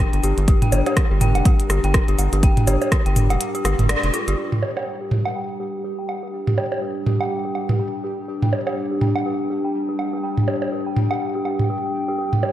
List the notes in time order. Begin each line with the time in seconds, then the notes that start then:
Already playing: G3 D4 G4 A#4 G5
0.13 G1, closed hi-hat
0.23 G1 G4, open hi-hat
0.38 G1, closed hi-hat
0.48 G4, kick, closed hi-hat
0.62 G5, closed hi-hat, mid tom
0.72 G1, open hi-hat, high bongo
0.86 G4, closed hi-hat, high bongo, low woodblock
0.97 kick, cross-stick, closed hi-hat
1.11 G1 G4
1.21 G5, mid tom, open hi-hat
1.35 F1, closed hi-hat, low woodblock
1.45 G4, kick, closed hi-hat
1.60 closed hi-hat
1.70 G1 G4, cross-stick, open hi-hat
1.84 G1 G5, closed hi-hat
1.94 kick, cross-stick, closed hi-hat
2.08 G1 G4, closed hi-hat
2.19 G1, open hi-hat, low woodblock
2.33 G1 G4, closed hi-hat
2.43 G5, kick, closed hi-hat
2.57 closed hi-hat, mid tom
2.67 G1 G4, open hi-hat, high bongo
2.82 open hi-hat, high bongo
2.92 G4, kick, cross-stick, closed hi-hat
3.06 G1 G5, closed hi-hat
3.16 mid tom, open hi-hat
3.30 F1 G4, closed hi-hat, low woodblock
3.41 closed hi-hat
3.55 G4, open hi-hat
3.65 G1 G4, cross-stick, open hi-hat, low woodblock
3.79 G1, closed hi-hat, mid tom
3.89 D5, cross-stick, closed hi-hat
4.03 F1, closed hi-hat
4.14 F4, open hi-hat
4.28 G1 G4, closed hi-hat
4.38 G3 D4 G4
4.52 mid tom
4.62 G4, high bongo
4.77 G4 G5, high bongo, low woodblock
5.01 G4
5.11 mid tom
5.20 G5
5.25 G4, low woodblock
5.36 G5
5.60 G4
5.84 G4
5.99 G5
6.09 low woodblock
6.23 G4
6.47 G4, mid tom
6.58 G5, high bongo
6.72 high bongo
6.82 G4
7.06 G4, mid tom
7.21 G5, low woodblock
7.45 G4
7.55 low woodblock
7.69 G4, mid tom
7.79 G5
8.04 G4
8.28 G4
8.42 G5, mid tom
8.53 high bongo
8.67 G4, high bongo, low woodblock
8.91 G4
9.01 G5, mid tom
9.16 low woodblock
9.26 G4
9.50 G4
9.64 G5
9.89 G4
9.99 low woodblock
10.13 G4
10.23 G5
10.38 mid tom
10.48 G4, high bongo
10.62 high bongo
10.72 G4
10.86 G5
10.96 mid tom
11.11 G4, low woodblock
11.35 G4
11.45 G4, low woodblock
11.59 mid tom
11.70 G4
12.08 G4
12.19 C4 G4
12.33 mid tom
12.43 G4, high bongo